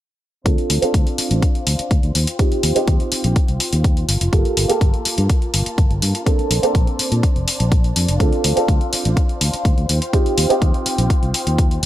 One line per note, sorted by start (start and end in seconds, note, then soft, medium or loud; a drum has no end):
0.45 0.55 D2 medium
0.45 0.79 C4 medium
0.45 0.79 D4 medium
0.45 2.13 D4 medium
0.45 0.79 F4 medium
0.45 0.80 A4 medium
0.45 4.05 C5 medium
0.45 2.13 F5 medium
0.45 kick loud
0.45 closed hi-hat medium
0.58 closed hi-hat soft
0.70 0.79 D2 medium
0.70 open hi-hat loud
0.82 2.13 C4 medium
0.82 2.14 D4 medium
0.82 2.14 F4 medium
0.82 2.14 A4 loud
0.82 muted fingered electric bass stroke soft
0.82 closed hi-hat soft
0.94 1.03 D2 medium
0.94 kick loud
0.94 closed hi-hat medium
1.07 closed hi-hat soft
1.18 muted fingered electric bass stroke soft
1.18 open hi-hat medium
1.31 1.40 A1 medium
1.31 closed hi-hat soft
1.42 kick loud
1.42 closed hi-hat medium
1.55 closed hi-hat soft
1.67 1.76 D2 medium
1.67 open hi-hat loud
1.79 muted fingered electric bass stroke soft
1.79 closed hi-hat soft
1.91 2.00 D2 medium
1.91 kick loud
1.91 closed hi-hat medium
2.03 2.12 D2 medium
2.03 closed hi-hat soft
2.15 2.24 D#2 medium
2.15 6.22 F4 medium
2.15 4.07 G5 medium
2.15 open hi-hat medium
2.27 closed hi-hat medium
2.39 2.73 C4 medium
2.39 2.73 D#4 medium
2.39 2.73 F4 medium
2.39 2.73 G4 medium
2.39 kick loud
2.39 closed hi-hat soft
2.52 muted fingered electric bass stroke soft
2.52 closed hi-hat soft
2.63 2.73 D#2 medium
2.63 open hi-hat loud
2.75 4.07 C4 loud
2.75 4.07 D#4 medium
2.75 4.07 F4 medium
2.75 4.08 G4 loud
2.75 muted fingered electric bass stroke soft
2.75 closed hi-hat soft
2.88 2.97 D#2 medium
2.88 kick loud
2.88 closed hi-hat soft
3.00 closed hi-hat soft
3.12 muted fingered electric bass stroke soft
3.12 open hi-hat medium
3.24 3.33 A#1 medium
3.24 closed hi-hat soft
3.36 kick loud
3.36 closed hi-hat soft
3.48 3.57 C2 medium
3.48 closed hi-hat soft
3.60 open hi-hat loud
3.73 4.04 D#2 medium
3.73 closed hi-hat soft
3.84 kick loud
3.84 closed hi-hat medium
3.97 closed hi-hat soft
4.08 4.18 G1 medium
4.08 6.24 A#3 medium
4.08 8.16 A5 medium
4.08 open hi-hat medium
4.21 4.30 F1 medium
4.21 closed hi-hat medium
4.32 4.66 A#3 medium
4.32 4.66 F4 medium
4.32 4.67 G4 medium
4.32 4.67 A4 medium
4.32 kick loud
4.32 closed hi-hat soft
4.45 closed hi-hat soft
4.57 4.66 G1 medium
4.57 open hi-hat loud
4.68 6.23 A#3 loud
4.68 6.23 F4 medium
4.68 6.23 G4 medium
4.68 6.24 A4 loud
4.68 closed hi-hat soft
4.81 4.90 G1 medium
4.81 kick loud
4.81 closed hi-hat medium
4.94 closed hi-hat soft
5.05 muted fingered electric bass stroke soft
5.05 open hi-hat medium
5.18 5.27 G2 medium
5.18 closed hi-hat soft
5.30 kick loud
5.30 closed hi-hat soft
5.42 closed hi-hat soft
5.54 5.63 G1 medium
5.54 open hi-hat loud
5.66 muted fingered electric bass stroke soft
5.66 closed hi-hat soft
5.78 5.87 G1 medium
5.78 kick loud
5.78 closed hi-hat soft
5.91 5.99 G1 medium
5.91 closed hi-hat soft
6.02 6.11 G2 medium
6.02 open hi-hat medium
6.15 closed hi-hat soft
6.26 6.60 A#3 medium
6.26 6.60 C4 medium
6.26 6.60 D4 medium
6.26 9.86 D4 medium
6.26 6.60 A4 loud
6.26 8.18 C5 medium
6.26 kick loud
6.26 closed hi-hat soft
6.39 muted fingered electric bass stroke soft
6.39 closed hi-hat soft
6.51 6.60 A#1 medium
6.51 open hi-hat loud
6.63 8.17 A#3 medium
6.63 8.17 C4 medium
6.63 8.17 D4 medium
6.63 8.18 A4 loud
6.63 muted fingered electric bass stroke soft
6.63 closed hi-hat soft
6.75 6.84 A#1 medium
6.75 kick loud
6.75 closed hi-hat soft
6.87 closed hi-hat soft
6.99 muted fingered electric bass stroke soft
6.99 open hi-hat medium
7.12 7.20 A#2 medium
7.12 closed hi-hat soft
7.23 kick loud
7.23 closed hi-hat soft
7.36 7.44 F1 medium
7.36 closed hi-hat soft
7.48 open hi-hat loud
7.60 7.91 A#1 medium
7.60 closed hi-hat soft
7.72 kick loud
7.72 closed hi-hat soft
7.84 closed hi-hat soft
7.96 8.05 F2 medium
7.96 open hi-hat medium
8.08 8.17 F1 medium
8.08 closed hi-hat soft
8.20 8.29 D2 loud
8.20 8.54 C4 medium
8.20 8.54 D4 medium
8.20 8.54 F4 medium
8.20 8.54 A4 medium
8.20 11.79 C5 medium
8.20 9.88 F5 medium
8.20 kick loud
8.20 closed hi-hat soft
8.33 closed hi-hat soft
8.44 8.54 D2 medium
8.44 open hi-hat loud
8.56 9.88 C4 medium
8.56 9.88 D4 medium
8.56 9.88 F4 medium
8.56 9.88 A4 loud
8.56 muted fingered electric bass stroke soft
8.56 closed hi-hat soft
8.68 8.78 D2 medium
8.68 kick loud
8.68 closed hi-hat soft
8.81 closed hi-hat soft
8.93 muted fingered electric bass stroke soft
8.93 open hi-hat medium
9.05 9.14 A1 medium
9.05 closed hi-hat soft
9.17 kick loud
9.17 closed hi-hat soft
9.29 closed hi-hat soft
9.41 9.50 D2 medium
9.41 open hi-hat loud
9.53 muted fingered electric bass stroke soft
9.53 closed hi-hat soft
9.65 9.74 D2 medium
9.65 kick loud
9.65 closed hi-hat soft
9.78 9.86 D2 medium
9.78 closed hi-hat soft
9.89 9.99 D#2 medium
9.89 11.81 F4 medium
9.89 11.81 G5 medium
9.89 open hi-hat medium
10.02 closed hi-hat soft
10.13 10.47 C4 medium
10.13 10.47 D#4 medium
10.13 10.47 F4 medium
10.13 10.47 G4 medium
10.13 kick loud
10.13 closed hi-hat soft
10.26 muted fingered electric bass stroke soft
10.26 closed hi-hat soft
10.38 10.47 D#2 medium
10.38 open hi-hat loud
10.49 11.81 C4 medium
10.49 11.81 D#4 medium
10.49 11.82 F4 medium
10.49 11.82 G4 loud
10.49 muted fingered electric bass stroke soft
10.49 closed hi-hat soft
10.62 10.71 D#2 medium
10.62 kick loud
10.62 closed hi-hat soft
10.74 closed hi-hat soft
10.86 muted fingered electric bass stroke soft
10.86 open hi-hat medium
10.98 11.07 A#1 medium
10.98 closed hi-hat medium
11.10 kick loud
11.10 closed hi-hat soft
11.23 11.31 C2 medium
11.23 closed hi-hat soft
11.34 open hi-hat loud
11.47 11.78 D#2 medium
11.47 closed hi-hat soft
11.58 kick loud
11.58 closed hi-hat medium
11.71 closed hi-hat soft